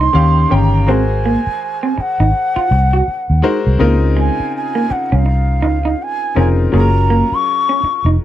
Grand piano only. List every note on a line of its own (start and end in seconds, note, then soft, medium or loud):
0.13 0.46 D#3 medium
0.13 0.46 C#4 medium
0.13 0.46 G4 medium
0.13 0.47 F5 medium
0.50 0.83 D#3 medium
0.50 0.83 C#4 medium
0.50 0.83 G4 medium
0.50 0.83 G5 medium
0.87 2.15 G#3 medium
0.87 2.16 F#4 medium
0.87 2.16 A#4 medium
0.87 2.16 C5 medium
3.42 3.75 G#3 medium
3.42 3.75 F#4 medium
3.42 3.76 A#4 medium
3.42 3.76 C5 medium
3.79 5.08 C#3 medium
3.79 5.08 C4 medium
3.79 5.08 D#4 medium
3.79 5.08 F4 medium
3.79 5.09 A#4 medium
6.35 6.68 C#3 medium
6.35 6.68 C4 medium
6.35 6.68 D#4 medium
6.35 6.68 F4 medium
6.35 6.69 A#4 medium
6.72 8.01 F#3 medium
6.72 8.01 C#4 medium
6.72 8.01 F4 medium
6.72 6.81 G#4 medium
6.80 8.05 A#4 medium